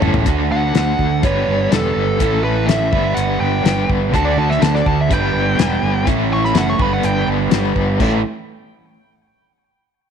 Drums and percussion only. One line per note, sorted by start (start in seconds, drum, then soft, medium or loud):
0.02 mid tom loud
0.14 floor tom loud
0.26 kick loud
0.26 closed hi-hat medium
0.75 snare loud
0.75 closed hi-hat medium
0.99 kick medium
1.23 kick loud
1.23 closed hi-hat medium
1.72 snare loud
1.72 closed hi-hat medium
2.20 kick loud
2.20 closed hi-hat medium
2.69 snare loud
2.69 closed hi-hat medium
2.93 kick loud
3.17 closed hi-hat medium
3.65 snare loud
3.65 closed hi-hat medium
3.89 kick medium
4.14 kick loud
4.14 closed hi-hat medium
4.51 snare soft
4.62 snare loud
4.62 closed hi-hat medium
4.75 snare soft
4.86 kick medium
5.11 kick loud
5.11 closed hi-hat medium
5.59 snare loud
5.59 closed hi-hat medium
6.07 kick loud
6.07 closed hi-hat medium
6.45 snare soft
6.55 snare loud
6.55 closed hi-hat medium
6.79 kick loud
7.03 closed hi-hat medium
7.51 snare loud
7.51 closed hi-hat medium
7.76 kick medium
8.00 kick loud
8.00 crash medium